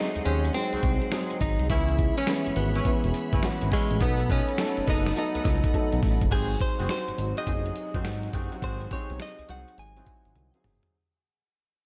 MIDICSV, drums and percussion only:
0, 0, Header, 1, 2, 480
1, 0, Start_track
1, 0, Tempo, 576923
1, 1413, Time_signature, 4, 2, 24, 8
1, 9861, End_track
2, 0, Start_track
2, 0, Title_t, "Drums"
2, 126, Note_on_c, 9, 42, 49
2, 210, Note_off_c, 9, 42, 0
2, 213, Note_on_c, 9, 54, 74
2, 214, Note_on_c, 9, 42, 78
2, 297, Note_off_c, 9, 42, 0
2, 297, Note_off_c, 9, 54, 0
2, 371, Note_on_c, 9, 42, 57
2, 452, Note_on_c, 9, 54, 71
2, 453, Note_off_c, 9, 42, 0
2, 453, Note_on_c, 9, 42, 74
2, 535, Note_off_c, 9, 54, 0
2, 536, Note_off_c, 9, 42, 0
2, 606, Note_on_c, 9, 42, 61
2, 687, Note_on_c, 9, 54, 74
2, 689, Note_off_c, 9, 42, 0
2, 690, Note_on_c, 9, 42, 91
2, 692, Note_on_c, 9, 36, 101
2, 771, Note_off_c, 9, 54, 0
2, 773, Note_off_c, 9, 42, 0
2, 775, Note_off_c, 9, 36, 0
2, 846, Note_on_c, 9, 42, 57
2, 929, Note_off_c, 9, 42, 0
2, 929, Note_on_c, 9, 38, 106
2, 930, Note_on_c, 9, 42, 80
2, 930, Note_on_c, 9, 54, 88
2, 1012, Note_off_c, 9, 38, 0
2, 1013, Note_off_c, 9, 54, 0
2, 1014, Note_off_c, 9, 42, 0
2, 1083, Note_on_c, 9, 42, 59
2, 1166, Note_off_c, 9, 42, 0
2, 1169, Note_on_c, 9, 54, 68
2, 1171, Note_on_c, 9, 46, 77
2, 1173, Note_on_c, 9, 36, 102
2, 1252, Note_off_c, 9, 54, 0
2, 1254, Note_off_c, 9, 46, 0
2, 1256, Note_off_c, 9, 36, 0
2, 1327, Note_on_c, 9, 42, 62
2, 1410, Note_off_c, 9, 42, 0
2, 1411, Note_on_c, 9, 54, 64
2, 1412, Note_on_c, 9, 36, 114
2, 1412, Note_on_c, 9, 42, 90
2, 1495, Note_off_c, 9, 42, 0
2, 1495, Note_off_c, 9, 54, 0
2, 1496, Note_off_c, 9, 36, 0
2, 1569, Note_on_c, 9, 42, 45
2, 1652, Note_off_c, 9, 42, 0
2, 1653, Note_on_c, 9, 42, 72
2, 1654, Note_on_c, 9, 36, 84
2, 1736, Note_off_c, 9, 42, 0
2, 1737, Note_off_c, 9, 36, 0
2, 1809, Note_on_c, 9, 42, 56
2, 1889, Note_on_c, 9, 38, 109
2, 1890, Note_on_c, 9, 54, 83
2, 1892, Note_off_c, 9, 42, 0
2, 1892, Note_on_c, 9, 42, 76
2, 1972, Note_off_c, 9, 38, 0
2, 1973, Note_off_c, 9, 54, 0
2, 1975, Note_off_c, 9, 42, 0
2, 2048, Note_on_c, 9, 42, 50
2, 2130, Note_off_c, 9, 42, 0
2, 2130, Note_on_c, 9, 42, 77
2, 2130, Note_on_c, 9, 54, 68
2, 2213, Note_off_c, 9, 54, 0
2, 2214, Note_off_c, 9, 42, 0
2, 2292, Note_on_c, 9, 42, 64
2, 2372, Note_on_c, 9, 36, 93
2, 2372, Note_on_c, 9, 54, 72
2, 2373, Note_off_c, 9, 42, 0
2, 2373, Note_on_c, 9, 42, 76
2, 2455, Note_off_c, 9, 36, 0
2, 2455, Note_off_c, 9, 54, 0
2, 2456, Note_off_c, 9, 42, 0
2, 2529, Note_on_c, 9, 42, 62
2, 2611, Note_on_c, 9, 54, 78
2, 2613, Note_off_c, 9, 42, 0
2, 2614, Note_on_c, 9, 42, 88
2, 2694, Note_off_c, 9, 54, 0
2, 2697, Note_off_c, 9, 42, 0
2, 2769, Note_on_c, 9, 36, 96
2, 2770, Note_on_c, 9, 42, 60
2, 2852, Note_off_c, 9, 36, 0
2, 2852, Note_on_c, 9, 38, 106
2, 2853, Note_off_c, 9, 42, 0
2, 2853, Note_on_c, 9, 42, 75
2, 2853, Note_on_c, 9, 54, 86
2, 2935, Note_off_c, 9, 38, 0
2, 2936, Note_off_c, 9, 42, 0
2, 2936, Note_off_c, 9, 54, 0
2, 3007, Note_on_c, 9, 42, 57
2, 3090, Note_off_c, 9, 42, 0
2, 3090, Note_on_c, 9, 54, 62
2, 3092, Note_on_c, 9, 46, 79
2, 3094, Note_on_c, 9, 36, 98
2, 3173, Note_off_c, 9, 54, 0
2, 3175, Note_off_c, 9, 46, 0
2, 3177, Note_off_c, 9, 36, 0
2, 3250, Note_on_c, 9, 42, 60
2, 3332, Note_off_c, 9, 42, 0
2, 3332, Note_on_c, 9, 42, 87
2, 3332, Note_on_c, 9, 54, 66
2, 3333, Note_on_c, 9, 36, 112
2, 3415, Note_off_c, 9, 54, 0
2, 3416, Note_off_c, 9, 42, 0
2, 3417, Note_off_c, 9, 36, 0
2, 3490, Note_on_c, 9, 42, 46
2, 3574, Note_off_c, 9, 42, 0
2, 3575, Note_on_c, 9, 36, 81
2, 3576, Note_on_c, 9, 42, 68
2, 3658, Note_off_c, 9, 36, 0
2, 3659, Note_off_c, 9, 42, 0
2, 3733, Note_on_c, 9, 42, 58
2, 3812, Note_on_c, 9, 38, 110
2, 3813, Note_on_c, 9, 54, 84
2, 3815, Note_off_c, 9, 42, 0
2, 3815, Note_on_c, 9, 42, 75
2, 3895, Note_off_c, 9, 38, 0
2, 3896, Note_off_c, 9, 54, 0
2, 3898, Note_off_c, 9, 42, 0
2, 3970, Note_on_c, 9, 42, 50
2, 4053, Note_off_c, 9, 42, 0
2, 4055, Note_on_c, 9, 46, 83
2, 4055, Note_on_c, 9, 54, 68
2, 4057, Note_on_c, 9, 36, 87
2, 4138, Note_off_c, 9, 54, 0
2, 4139, Note_off_c, 9, 46, 0
2, 4140, Note_off_c, 9, 36, 0
2, 4214, Note_on_c, 9, 38, 63
2, 4214, Note_on_c, 9, 42, 63
2, 4296, Note_on_c, 9, 54, 67
2, 4297, Note_off_c, 9, 38, 0
2, 4297, Note_off_c, 9, 42, 0
2, 4297, Note_on_c, 9, 42, 75
2, 4379, Note_off_c, 9, 54, 0
2, 4380, Note_off_c, 9, 42, 0
2, 4452, Note_on_c, 9, 42, 59
2, 4533, Note_on_c, 9, 54, 80
2, 4536, Note_off_c, 9, 42, 0
2, 4536, Note_on_c, 9, 36, 102
2, 4536, Note_on_c, 9, 38, 73
2, 4536, Note_on_c, 9, 42, 86
2, 4617, Note_off_c, 9, 54, 0
2, 4619, Note_off_c, 9, 36, 0
2, 4619, Note_off_c, 9, 38, 0
2, 4619, Note_off_c, 9, 42, 0
2, 4691, Note_on_c, 9, 36, 97
2, 4694, Note_on_c, 9, 42, 59
2, 4774, Note_off_c, 9, 36, 0
2, 4776, Note_on_c, 9, 36, 58
2, 4777, Note_off_c, 9, 42, 0
2, 4778, Note_on_c, 9, 42, 82
2, 4859, Note_off_c, 9, 36, 0
2, 4861, Note_off_c, 9, 42, 0
2, 4930, Note_on_c, 9, 42, 58
2, 5013, Note_off_c, 9, 42, 0
2, 5015, Note_on_c, 9, 36, 96
2, 5016, Note_on_c, 9, 46, 75
2, 5098, Note_off_c, 9, 36, 0
2, 5099, Note_off_c, 9, 46, 0
2, 5171, Note_on_c, 9, 36, 103
2, 5173, Note_on_c, 9, 42, 55
2, 5254, Note_off_c, 9, 36, 0
2, 5254, Note_off_c, 9, 42, 0
2, 5254, Note_on_c, 9, 36, 113
2, 5254, Note_on_c, 9, 42, 84
2, 5254, Note_on_c, 9, 49, 94
2, 5254, Note_on_c, 9, 54, 63
2, 5337, Note_off_c, 9, 42, 0
2, 5337, Note_off_c, 9, 49, 0
2, 5337, Note_off_c, 9, 54, 0
2, 5338, Note_off_c, 9, 36, 0
2, 5412, Note_on_c, 9, 42, 44
2, 5495, Note_off_c, 9, 42, 0
2, 5495, Note_on_c, 9, 42, 71
2, 5496, Note_on_c, 9, 36, 84
2, 5579, Note_off_c, 9, 36, 0
2, 5579, Note_off_c, 9, 42, 0
2, 5654, Note_on_c, 9, 42, 59
2, 5734, Note_on_c, 9, 38, 106
2, 5735, Note_on_c, 9, 54, 90
2, 5737, Note_off_c, 9, 42, 0
2, 5737, Note_on_c, 9, 42, 76
2, 5817, Note_off_c, 9, 38, 0
2, 5819, Note_off_c, 9, 54, 0
2, 5820, Note_off_c, 9, 42, 0
2, 5890, Note_on_c, 9, 42, 53
2, 5973, Note_off_c, 9, 42, 0
2, 5977, Note_on_c, 9, 42, 80
2, 5977, Note_on_c, 9, 54, 69
2, 6060, Note_off_c, 9, 42, 0
2, 6060, Note_off_c, 9, 54, 0
2, 6134, Note_on_c, 9, 42, 60
2, 6215, Note_on_c, 9, 36, 87
2, 6216, Note_on_c, 9, 54, 68
2, 6217, Note_off_c, 9, 42, 0
2, 6217, Note_on_c, 9, 42, 82
2, 6298, Note_off_c, 9, 36, 0
2, 6299, Note_off_c, 9, 54, 0
2, 6300, Note_off_c, 9, 42, 0
2, 6371, Note_on_c, 9, 42, 57
2, 6451, Note_on_c, 9, 54, 78
2, 6454, Note_off_c, 9, 42, 0
2, 6454, Note_on_c, 9, 42, 81
2, 6534, Note_off_c, 9, 54, 0
2, 6537, Note_off_c, 9, 42, 0
2, 6610, Note_on_c, 9, 36, 97
2, 6610, Note_on_c, 9, 42, 60
2, 6693, Note_off_c, 9, 36, 0
2, 6693, Note_off_c, 9, 42, 0
2, 6695, Note_on_c, 9, 38, 109
2, 6696, Note_on_c, 9, 54, 90
2, 6697, Note_on_c, 9, 42, 72
2, 6778, Note_off_c, 9, 38, 0
2, 6779, Note_off_c, 9, 54, 0
2, 6780, Note_off_c, 9, 42, 0
2, 6850, Note_on_c, 9, 42, 56
2, 6931, Note_on_c, 9, 54, 66
2, 6933, Note_off_c, 9, 42, 0
2, 6933, Note_on_c, 9, 46, 78
2, 6935, Note_on_c, 9, 36, 92
2, 7015, Note_off_c, 9, 54, 0
2, 7017, Note_off_c, 9, 46, 0
2, 7018, Note_off_c, 9, 36, 0
2, 7090, Note_on_c, 9, 42, 58
2, 7173, Note_off_c, 9, 42, 0
2, 7173, Note_on_c, 9, 54, 62
2, 7174, Note_on_c, 9, 36, 108
2, 7174, Note_on_c, 9, 42, 77
2, 7256, Note_off_c, 9, 54, 0
2, 7257, Note_off_c, 9, 36, 0
2, 7257, Note_off_c, 9, 42, 0
2, 7331, Note_on_c, 9, 42, 45
2, 7413, Note_off_c, 9, 42, 0
2, 7413, Note_on_c, 9, 42, 71
2, 7415, Note_on_c, 9, 36, 89
2, 7496, Note_off_c, 9, 42, 0
2, 7498, Note_off_c, 9, 36, 0
2, 7571, Note_on_c, 9, 42, 55
2, 7652, Note_on_c, 9, 38, 105
2, 7653, Note_on_c, 9, 54, 87
2, 7654, Note_off_c, 9, 42, 0
2, 7655, Note_on_c, 9, 42, 73
2, 7735, Note_off_c, 9, 38, 0
2, 7736, Note_off_c, 9, 54, 0
2, 7738, Note_off_c, 9, 42, 0
2, 7810, Note_on_c, 9, 42, 50
2, 7893, Note_off_c, 9, 42, 0
2, 7894, Note_on_c, 9, 42, 81
2, 7894, Note_on_c, 9, 54, 68
2, 7977, Note_off_c, 9, 42, 0
2, 7977, Note_off_c, 9, 54, 0
2, 8053, Note_on_c, 9, 42, 59
2, 8136, Note_off_c, 9, 42, 0
2, 8136, Note_on_c, 9, 54, 65
2, 8137, Note_on_c, 9, 42, 75
2, 8219, Note_off_c, 9, 54, 0
2, 8220, Note_off_c, 9, 42, 0
2, 8291, Note_on_c, 9, 42, 55
2, 8372, Note_on_c, 9, 54, 74
2, 8374, Note_off_c, 9, 42, 0
2, 8374, Note_on_c, 9, 42, 83
2, 8375, Note_on_c, 9, 36, 101
2, 8455, Note_off_c, 9, 54, 0
2, 8458, Note_off_c, 9, 42, 0
2, 8459, Note_off_c, 9, 36, 0
2, 8530, Note_on_c, 9, 42, 58
2, 8614, Note_off_c, 9, 42, 0
2, 8615, Note_on_c, 9, 48, 57
2, 8616, Note_on_c, 9, 42, 72
2, 8699, Note_off_c, 9, 42, 0
2, 8699, Note_off_c, 9, 48, 0
2, 8769, Note_on_c, 9, 42, 51
2, 8852, Note_off_c, 9, 42, 0
2, 8855, Note_on_c, 9, 45, 97
2, 8856, Note_on_c, 9, 46, 74
2, 8938, Note_off_c, 9, 45, 0
2, 8939, Note_off_c, 9, 46, 0
2, 9010, Note_on_c, 9, 43, 95
2, 9011, Note_on_c, 9, 42, 57
2, 9094, Note_off_c, 9, 42, 0
2, 9094, Note_off_c, 9, 43, 0
2, 9861, End_track
0, 0, End_of_file